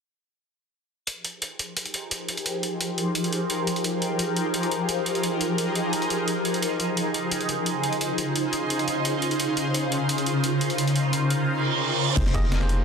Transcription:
1.07 F3 D#4 G4 G#4 A#4 C5, closed hi-hat
1.25 closed hi-hat
1.42 closed hi-hat
1.59 closed hi-hat
1.77 closed hi-hat
1.86 closed hi-hat
1.94 closed hi-hat
2.11 closed hi-hat
2.29 closed hi-hat
2.37 closed hi-hat
2.46 closed hi-hat
2.63 closed hi-hat
2.81 closed hi-hat
2.98 closed hi-hat
3.15 closed hi-hat
3.24 closed hi-hat
3.33 closed hi-hat
3.50 closed hi-hat
3.67 closed hi-hat
3.76 closed hi-hat
3.84 closed hi-hat
4.02 closed hi-hat
4.19 closed hi-hat
4.36 closed hi-hat
4.54 closed hi-hat
4.63 closed hi-hat
4.71 closed hi-hat
4.89 closed hi-hat
5.06 closed hi-hat
5.15 closed hi-hat
5.23 closed hi-hat
5.41 closed hi-hat
5.58 closed hi-hat
5.75 closed hi-hat
5.93 closed hi-hat
6.02 closed hi-hat
6.10 closed hi-hat
6.28 closed hi-hat
6.45 closed hi-hat
6.54 closed hi-hat
6.62 C#3 F4 C5, closed hi-hat
6.80 closed hi-hat
6.97 closed hi-hat
7.14 closed hi-hat
7.31 closed hi-hat
7.41 closed hi-hat
7.49 closed hi-hat
7.66 closed hi-hat
7.83 closed hi-hat
7.93 closed hi-hat
8.01 closed hi-hat
8.18 closed hi-hat
8.36 closed hi-hat
8.53 closed hi-hat
8.70 closed hi-hat
8.79 closed hi-hat
8.88 closed hi-hat
9.05 closed hi-hat
9.22 closed hi-hat
9.31 closed hi-hat
9.40 A#4, closed hi-hat
9.57 closed hi-hat
9.74 closed hi-hat
9.92 closed hi-hat
10.09 closed hi-hat
10.18 closed hi-hat
10.26 closed hi-hat
10.44 closed hi-hat
10.61 closed hi-hat
10.70 closed hi-hat
10.78 closed hi-hat
10.88 closed hi-hat
10.96 closed hi-hat
11.13 closed hi-hat
11.30 closed hi-hat
11.48 reverse cymbal
12.16 F1 G#3 A#3 D#4 G4 G#4 C5 G5, kick, closed hi-hat, crash
12.26 snare
12.34 A#3 D#4 G4 G#4 D#5, kick, closed hi-hat
12.52 snare, closed hi-hat
12.60 A#3 D#4 G4 G#4 C5, snare
12.69 closed hi-hat

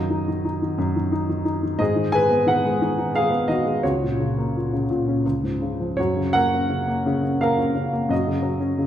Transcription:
Already playing: F#2 D#3 F#4 D#5
0.10 D#4
0.28 D#3
0.45 D#4
0.62 D#3
0.78 F#2
0.96 D#3
1.12 D#4
1.29 D#3
1.45 D#4
1.63 D#3
1.79 G#2 G#4 D#5
1.96 D#3
2.12 G#3 B4 G#5
2.30 B3
2.46 D#3 B4 F#5
2.65 G#3
2.82 D#3
2.98 D#4
3.14 G#3 G#4 F5
3.30 B3
3.48 D#3 F#4 D#5
3.65 G#3
3.83 C#2 F#4 C#5
4.01 A#2
4.19 C#3
4.38 A#3
4.56 A#2
4.73 C#3
4.90 A#2
5.08 C#4
5.26 C#2
5.44 G#2
5.62 C#3
5.80 F3
5.97 F#2 F#4 C#5
6.16 C#3
6.33 A#3 A#4 F#5
6.53 C#4
6.69 C#3
6.87 A#3
7.06 C#3
7.23 C#4
7.41 A#3 A#4 F5
7.58 C#4
7.75 C#3
7.93 A#3
8.09 F#2 F#4 D#5
8.27 C#3
8.43 F#3
8.60 C#4
8.78 C#3

